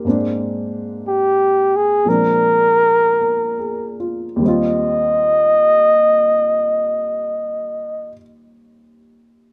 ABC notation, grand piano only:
X:1
M:4/4
L:1/8
Q:"Swing" 1/4=46
K:Eb
V:1 name="Grand piano"
B z4 z (3B A F | z8 |]
V:2 name="Grand piano" clef=bass
[A,,A,B,CD]4 [B,,F,A,CD]4 | [E,,E,G,CF]8 |]